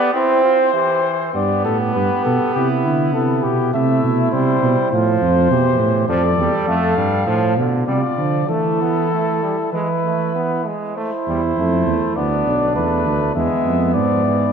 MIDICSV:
0, 0, Header, 1, 5, 480
1, 0, Start_track
1, 0, Tempo, 601805
1, 1074, Time_signature, 4, 2, 24, 8
1, 2031, Tempo, 590551
1, 5871, Tempo, 616650
1, 8751, Tempo, 591716
1, 11634, End_track
2, 0, Start_track
2, 0, Title_t, "Trumpet"
2, 0, Program_c, 0, 56
2, 0, Note_on_c, 0, 74, 82
2, 111, Note_off_c, 0, 74, 0
2, 116, Note_on_c, 0, 72, 80
2, 1058, Note_off_c, 0, 72, 0
2, 1078, Note_on_c, 0, 74, 66
2, 1301, Note_off_c, 0, 74, 0
2, 1312, Note_on_c, 0, 69, 66
2, 1421, Note_off_c, 0, 69, 0
2, 1552, Note_on_c, 0, 71, 71
2, 1788, Note_off_c, 0, 71, 0
2, 1794, Note_on_c, 0, 69, 67
2, 2025, Note_off_c, 0, 69, 0
2, 2030, Note_on_c, 0, 67, 67
2, 2139, Note_off_c, 0, 67, 0
2, 2272, Note_on_c, 0, 64, 62
2, 2504, Note_off_c, 0, 64, 0
2, 2508, Note_on_c, 0, 69, 67
2, 2751, Note_on_c, 0, 67, 64
2, 2763, Note_off_c, 0, 69, 0
2, 2994, Note_off_c, 0, 67, 0
2, 2999, Note_on_c, 0, 76, 62
2, 3468, Note_off_c, 0, 76, 0
2, 3471, Note_on_c, 0, 72, 70
2, 3945, Note_off_c, 0, 72, 0
2, 3959, Note_on_c, 0, 72, 75
2, 4891, Note_off_c, 0, 72, 0
2, 4905, Note_on_c, 0, 74, 75
2, 5378, Note_off_c, 0, 74, 0
2, 5389, Note_on_c, 0, 77, 78
2, 6109, Note_off_c, 0, 77, 0
2, 6347, Note_on_c, 0, 74, 69
2, 6796, Note_off_c, 0, 74, 0
2, 6822, Note_on_c, 0, 69, 70
2, 7767, Note_off_c, 0, 69, 0
2, 7784, Note_on_c, 0, 71, 69
2, 8495, Note_off_c, 0, 71, 0
2, 8752, Note_on_c, 0, 72, 62
2, 9692, Note_off_c, 0, 72, 0
2, 9718, Note_on_c, 0, 74, 67
2, 10191, Note_off_c, 0, 74, 0
2, 10201, Note_on_c, 0, 71, 67
2, 10673, Note_off_c, 0, 71, 0
2, 10684, Note_on_c, 0, 76, 62
2, 11151, Note_off_c, 0, 76, 0
2, 11161, Note_on_c, 0, 74, 72
2, 11623, Note_off_c, 0, 74, 0
2, 11634, End_track
3, 0, Start_track
3, 0, Title_t, "Flugelhorn"
3, 0, Program_c, 1, 56
3, 0, Note_on_c, 1, 67, 72
3, 104, Note_off_c, 1, 67, 0
3, 107, Note_on_c, 1, 64, 73
3, 343, Note_off_c, 1, 64, 0
3, 355, Note_on_c, 1, 65, 62
3, 461, Note_off_c, 1, 65, 0
3, 586, Note_on_c, 1, 67, 64
3, 821, Note_off_c, 1, 67, 0
3, 826, Note_on_c, 1, 72, 68
3, 1063, Note_off_c, 1, 72, 0
3, 1068, Note_on_c, 1, 67, 61
3, 1521, Note_off_c, 1, 67, 0
3, 1549, Note_on_c, 1, 67, 60
3, 2018, Note_off_c, 1, 67, 0
3, 2049, Note_on_c, 1, 64, 64
3, 2514, Note_off_c, 1, 64, 0
3, 2523, Note_on_c, 1, 64, 60
3, 2991, Note_off_c, 1, 64, 0
3, 3000, Note_on_c, 1, 64, 75
3, 3940, Note_off_c, 1, 64, 0
3, 3967, Note_on_c, 1, 65, 73
3, 4429, Note_off_c, 1, 65, 0
3, 4437, Note_on_c, 1, 67, 59
3, 4901, Note_off_c, 1, 67, 0
3, 4912, Note_on_c, 1, 69, 77
3, 6101, Note_off_c, 1, 69, 0
3, 6338, Note_on_c, 1, 65, 66
3, 6791, Note_off_c, 1, 65, 0
3, 6835, Note_on_c, 1, 64, 71
3, 7774, Note_off_c, 1, 64, 0
3, 7786, Note_on_c, 1, 64, 72
3, 8496, Note_off_c, 1, 64, 0
3, 8750, Note_on_c, 1, 64, 66
3, 9690, Note_off_c, 1, 64, 0
3, 9725, Note_on_c, 1, 62, 73
3, 10666, Note_off_c, 1, 62, 0
3, 10690, Note_on_c, 1, 59, 69
3, 11634, Note_off_c, 1, 59, 0
3, 11634, End_track
4, 0, Start_track
4, 0, Title_t, "Trombone"
4, 0, Program_c, 2, 57
4, 0, Note_on_c, 2, 59, 103
4, 99, Note_off_c, 2, 59, 0
4, 109, Note_on_c, 2, 60, 92
4, 579, Note_off_c, 2, 60, 0
4, 585, Note_on_c, 2, 52, 78
4, 1063, Note_off_c, 2, 52, 0
4, 1071, Note_on_c, 2, 59, 78
4, 2962, Note_off_c, 2, 59, 0
4, 3000, Note_on_c, 2, 57, 69
4, 3485, Note_on_c, 2, 55, 68
4, 3497, Note_off_c, 2, 57, 0
4, 3959, Note_off_c, 2, 55, 0
4, 3964, Note_on_c, 2, 53, 72
4, 4427, Note_off_c, 2, 53, 0
4, 4440, Note_on_c, 2, 52, 64
4, 4903, Note_off_c, 2, 52, 0
4, 4913, Note_on_c, 2, 53, 84
4, 5020, Note_off_c, 2, 53, 0
4, 5155, Note_on_c, 2, 55, 78
4, 5388, Note_off_c, 2, 55, 0
4, 5394, Note_on_c, 2, 57, 89
4, 5620, Note_off_c, 2, 57, 0
4, 5624, Note_on_c, 2, 55, 76
4, 5865, Note_off_c, 2, 55, 0
4, 5870, Note_on_c, 2, 53, 86
4, 6102, Note_off_c, 2, 53, 0
4, 6106, Note_on_c, 2, 50, 66
4, 6338, Note_off_c, 2, 50, 0
4, 6342, Note_on_c, 2, 55, 68
4, 6451, Note_off_c, 2, 55, 0
4, 6581, Note_on_c, 2, 53, 69
4, 6821, Note_on_c, 2, 57, 68
4, 6832, Note_off_c, 2, 53, 0
4, 7070, Note_on_c, 2, 59, 64
4, 7082, Note_off_c, 2, 57, 0
4, 7307, Note_off_c, 2, 59, 0
4, 7312, Note_on_c, 2, 57, 64
4, 7545, Note_off_c, 2, 57, 0
4, 7552, Note_on_c, 2, 55, 53
4, 7659, Note_off_c, 2, 55, 0
4, 7792, Note_on_c, 2, 56, 59
4, 7900, Note_off_c, 2, 56, 0
4, 8030, Note_on_c, 2, 57, 54
4, 8266, Note_off_c, 2, 57, 0
4, 8271, Note_on_c, 2, 59, 63
4, 8512, Note_on_c, 2, 56, 60
4, 8524, Note_off_c, 2, 59, 0
4, 8746, Note_off_c, 2, 56, 0
4, 8751, Note_on_c, 2, 57, 63
4, 8861, Note_off_c, 2, 57, 0
4, 8998, Note_on_c, 2, 55, 57
4, 9108, Note_off_c, 2, 55, 0
4, 9239, Note_on_c, 2, 57, 62
4, 9719, Note_on_c, 2, 59, 68
4, 9732, Note_off_c, 2, 57, 0
4, 10197, Note_off_c, 2, 59, 0
4, 10202, Note_on_c, 2, 57, 64
4, 10674, Note_off_c, 2, 57, 0
4, 10688, Note_on_c, 2, 56, 75
4, 11153, Note_off_c, 2, 56, 0
4, 11162, Note_on_c, 2, 53, 64
4, 11404, Note_on_c, 2, 52, 65
4, 11416, Note_off_c, 2, 53, 0
4, 11634, Note_off_c, 2, 52, 0
4, 11634, End_track
5, 0, Start_track
5, 0, Title_t, "Tuba"
5, 0, Program_c, 3, 58
5, 1074, Note_on_c, 3, 43, 55
5, 1319, Note_on_c, 3, 45, 57
5, 1331, Note_off_c, 3, 43, 0
5, 1555, Note_off_c, 3, 45, 0
5, 1560, Note_on_c, 3, 43, 58
5, 1666, Note_off_c, 3, 43, 0
5, 1800, Note_on_c, 3, 47, 63
5, 1905, Note_off_c, 3, 47, 0
5, 2040, Note_on_c, 3, 48, 63
5, 2281, Note_on_c, 3, 50, 64
5, 2293, Note_off_c, 3, 48, 0
5, 2518, Note_on_c, 3, 48, 58
5, 2530, Note_off_c, 3, 50, 0
5, 2755, Note_off_c, 3, 48, 0
5, 2760, Note_on_c, 3, 47, 58
5, 2993, Note_off_c, 3, 47, 0
5, 3003, Note_on_c, 3, 48, 68
5, 3235, Note_off_c, 3, 48, 0
5, 3241, Note_on_c, 3, 47, 62
5, 3474, Note_off_c, 3, 47, 0
5, 3480, Note_on_c, 3, 48, 63
5, 3714, Note_off_c, 3, 48, 0
5, 3721, Note_on_c, 3, 47, 70
5, 3828, Note_off_c, 3, 47, 0
5, 3962, Note_on_c, 3, 45, 70
5, 4194, Note_off_c, 3, 45, 0
5, 4198, Note_on_c, 3, 41, 78
5, 4430, Note_off_c, 3, 41, 0
5, 4434, Note_on_c, 3, 47, 72
5, 4666, Note_on_c, 3, 45, 72
5, 4678, Note_off_c, 3, 47, 0
5, 4901, Note_off_c, 3, 45, 0
5, 4906, Note_on_c, 3, 41, 67
5, 5140, Note_off_c, 3, 41, 0
5, 5145, Note_on_c, 3, 40, 62
5, 5254, Note_off_c, 3, 40, 0
5, 5381, Note_on_c, 3, 41, 61
5, 5620, Note_off_c, 3, 41, 0
5, 5626, Note_on_c, 3, 43, 64
5, 5860, Note_off_c, 3, 43, 0
5, 5865, Note_on_c, 3, 45, 67
5, 6102, Note_on_c, 3, 47, 68
5, 6114, Note_off_c, 3, 45, 0
5, 6340, Note_off_c, 3, 47, 0
5, 6345, Note_on_c, 3, 48, 60
5, 6452, Note_off_c, 3, 48, 0
5, 6580, Note_on_c, 3, 50, 62
5, 6815, Note_off_c, 3, 50, 0
5, 6820, Note_on_c, 3, 52, 66
5, 7547, Note_off_c, 3, 52, 0
5, 7784, Note_on_c, 3, 52, 67
5, 8479, Note_off_c, 3, 52, 0
5, 8998, Note_on_c, 3, 40, 67
5, 9224, Note_off_c, 3, 40, 0
5, 9237, Note_on_c, 3, 41, 65
5, 9476, Note_off_c, 3, 41, 0
5, 9480, Note_on_c, 3, 40, 69
5, 9589, Note_off_c, 3, 40, 0
5, 9722, Note_on_c, 3, 38, 67
5, 9958, Note_off_c, 3, 38, 0
5, 9963, Note_on_c, 3, 35, 69
5, 10205, Note_on_c, 3, 40, 71
5, 10218, Note_off_c, 3, 35, 0
5, 10442, Note_on_c, 3, 38, 68
5, 10454, Note_off_c, 3, 40, 0
5, 10681, Note_off_c, 3, 38, 0
5, 10686, Note_on_c, 3, 40, 73
5, 10793, Note_off_c, 3, 40, 0
5, 10930, Note_on_c, 3, 41, 65
5, 11168, Note_on_c, 3, 44, 66
5, 11180, Note_off_c, 3, 41, 0
5, 11634, Note_off_c, 3, 44, 0
5, 11634, End_track
0, 0, End_of_file